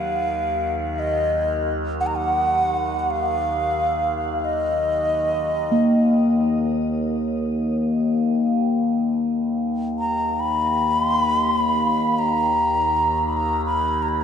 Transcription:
Already playing: synth drone D#2, singing bowl F#3, xiao F5
0.95 xiao D#5 F5
2.00 xiao F#5
2.07 xiao A#5
2.16 xiao F#5
2.99 xiao F#5
3.11 xiao F5
4.44 xiao D#5
5.72 singing bowl A#3
8.63 synth drone D#2
9.99 xiao A#5
10.40 xiao B5
11.04 xiao C6
11.21 xiao B5
11.40 xiao C6
11.57 xiao B5
12.18 xiao A#5
13.27 xiao B5
13.33 xiao A#5 B5
13.66 xiao B5
14.02 xiao A#5
14.09 xiao B5
14.17 xiao B5

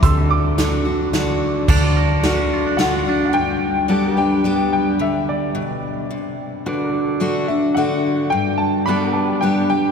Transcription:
0.03 fingered electric bass D2, steel-string acoustic guitar D3, pedal steel guitar G4 A4 E5, upright piano C6 E6, kick, closed hi-hat
0.24 pedal steel guitar F#4
0.30 pedal steel guitar D5, upright piano D6
0.58 steel-string acoustic guitar D3 A3 D4 F#4, snare, closed hi-hat
0.85 steel-string acoustic guitar D4 F#4
1.13 steel-string acoustic guitar D3 A3 D4 F#4, snare, closed hi-hat
1.68 fingered electric bass D2, steel-string acoustic guitar D3, clean electric guitar D4, pedal steel guitar F#4 D5 A5, kick, crash
1.83 clean electric guitar F4
1.97 clean electric guitar A#4
2.23 steel-string acoustic guitar D3 A3 D4 F#4, snare, ride
2.53 clean electric guitar F4
2.67 clean electric guitar D4
2.77 steel-string acoustic guitar D3 A3 D4 F#4, clean electric guitar F4, upright piano F#5, snare, ride
3.06 steel-string acoustic guitar D4 F#4, clean electric guitar D4
3.25 upright piano F#5
3.33 steel-string acoustic guitar G2, upright piano G5
3.88 steel-string acoustic guitar G3 B3 D4 G4, pedal steel guitar F#4 A4 D5
4.10 pedal steel guitar G4
4.16 steel-string acoustic guitar D4 G4, pedal steel guitar B4, upright piano G5
4.44 steel-string acoustic guitar G3 B3 D4 G4
4.73 upright piano G5
4.99 steel-string acoustic guitar D3, upright piano E5
5.29 upright piano D5
5.55 steel-string acoustic guitar B2
6.11 steel-string acoustic guitar C3
6.66 steel-string acoustic guitar D3, pedal steel guitar F#4 B4 D5
6.93 pedal steel guitar A4
7.20 steel-string acoustic guitar D3 A3 D4 F#4
7.48 steel-string acoustic guitar D4, upright piano E5
7.75 steel-string acoustic guitar D3 A3 D4 F#4, upright piano F#5
8.30 steel-string acoustic guitar G2, upright piano G5
8.58 upright piano A5
8.86 steel-string acoustic guitar G3 B3 D4 G4, pedal steel guitar F#4, upright piano B5
8.90 pedal steel guitar A4 D5
9.09 pedal steel guitar G4
9.13 pedal steel guitar B4, upright piano A5
9.41 steel-string acoustic guitar G3 B3 D4 G4, upright piano G5
9.70 steel-string acoustic guitar D4 G4, upright piano G5

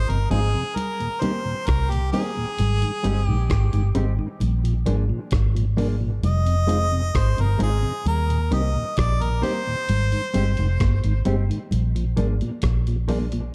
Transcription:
Already playing: harmonica C5
0.09 fingered electric bass G1, tonewheel organ F2 C3, harmonica A#4, closed hi-hat
0.30 fingered electric bass G#1, clean electric guitar F3 C4 D#4 G#4, tonewheel organ G#3 D#4 F4, harmonica G#4, closed hi-hat
0.54 tonewheel organ F2 C3
0.76 harmonica A#4, closed hi-hat, low conga
1.00 tonewheel organ D#2 A#2, closed hi-hat
1.21 clean electric guitar D#3 A#3 C4 G4, tonewheel organ G3 C4 D#4, harmonica C5, closed hi-hat, low conga
1.45 tonewheel organ D#2 A#2
1.67 fingered electric bass C2, harmonica A#4, kick, cross-stick, closed hi-hat
1.90 tonewheel organ D#2 A#2, harmonica G4, closed hi-hat
2.13 clean electric guitar D#3 A#3 C4 G4, tonewheel organ G3 C4 D#4, harmonica G#4, open hi-hat, low conga
2.37 tonewheel organ D#2 A#2
2.58 fingered electric bass G#1, closed hi-hat, low conga
2.82 tonewheel organ G#2 D#3, closed hi-hat
3.03 fingered electric bass G1, clean electric guitar G3 C4 D#4 G4, tonewheel organ G#3 C4 G4, closed hi-hat
3.27 fingered electric bass A#1, tonewheel organ G#2 D#3, harmonica G4
3.50 fingered electric bass G#1, kick, cross-stick, closed hi-hat
3.73 fingered electric bass G1, tonewheel organ G#2 D#3, closed hi-hat
3.95 fingered electric bass G#1, clean electric guitar G3 C4 D#4 G4, tonewheel organ G#3 C4 G4, closed hi-hat
4.19 tonewheel organ G#2 D#3
4.40 fingered electric bass A#1, closed hi-hat, low conga
4.64 tonewheel organ A#2 F3, closed hi-hat
4.86 fingered electric bass G#1, clean electric guitar F3 A#3 D4 G#4, tonewheel organ A#3 D4 G#4, closed hi-hat, low conga
5.09 tonewheel organ A#2 F3
5.31 fingered electric bass G#1, kick, cross-stick, closed hi-hat
5.55 tonewheel organ A#2 F3, closed hi-hat
5.77 clean electric guitar F3 A#3 D4 G#4, tonewheel organ A#3 D4 G#4, open hi-hat, low conga
6.00 tonewheel organ A#2 F3
6.23 fingered electric bass F1, harmonica D#5, closed hi-hat, low conga
6.46 tonewheel organ F2 C3, closed hi-hat
6.67 tonewheel organ G#3 D#4 F4, clean electric guitar G#3 C4 D#4 G#4, closed hi-hat
6.92 tonewheel organ F2 C3
7.15 fingered electric bass G#1, harmonica C5, kick, cross-stick, closed hi-hat
7.37 fingered electric bass G1, tonewheel organ F2 C3, harmonica A#4, closed hi-hat
7.58 fingered electric bass G#1, tonewheel organ G#3 D#4 F4, clean electric guitar G#3 C4 D#4 G#4, closed hi-hat
7.63 harmonica G#4
7.83 tonewheel organ F2 C3
8.05 fingered electric bass D#2, harmonica A#4, closed hi-hat, low conga
8.29 tonewheel organ D#2 A#2, closed hi-hat
8.51 fingered electric bass C2, clean electric guitar D#3 A#3 C4 G4, tonewheel organ G3 C4 D#4, harmonica D#5, closed hi-hat, low conga
8.75 tonewheel organ D#2 A#2
8.97 fingered electric bass A#1, harmonica D5, kick, cross-stick, closed hi-hat
9.21 tonewheel organ D#2 A#2, harmonica A#4, closed hi-hat
9.42 clean electric guitar D#3 A#3 C4 G4, tonewheel organ G3 C4 D#4, harmonica C5, open hi-hat, low conga
9.67 tonewheel organ D#2 A#2
9.89 fingered electric bass G#1, closed hi-hat, low conga
10.12 tonewheel organ G#2 D#3, closed hi-hat
10.34 fingered electric bass G1, clean electric guitar G3 C4 D#4 G4, tonewheel organ G#3 C4 G4, closed hi-hat
10.57 fingered electric bass F1, tonewheel organ G#2 D#3, closed hi-hat
10.80 fingered electric bass G1, kick, cross-stick, closed hi-hat, high conga
11.04 fingered electric bass G#1, tonewheel organ G#2 D#3, closed hi-hat
11.25 fingered electric bass G1, clean electric guitar G3 C4 D#4 G4, tonewheel organ G#3 C4 G4, closed hi-hat, high conga
11.50 tonewheel organ G#2 D#3, closed hi-hat
11.71 fingered electric bass A#1, closed hi-hat, low conga
11.95 tonewheel organ A#2 F3, closed hi-hat
12.17 fingered electric bass G#1, clean electric guitar F3 A#3 D4 G#4, tonewheel organ A#3 D4 G#4, closed hi-hat, low conga
12.41 tonewheel organ A#2 F3, closed hi-hat, high conga
12.62 fingered electric bass A#1, kick, cross-stick, closed hi-hat
12.87 tonewheel organ A#2 F3, closed hi-hat
13.08 clean electric guitar F3 A#3 D4 G#4, tonewheel organ A#3 D4 G#4, open hi-hat, high conga, low conga
13.32 tonewheel organ A#2 F3, closed hi-hat, high conga

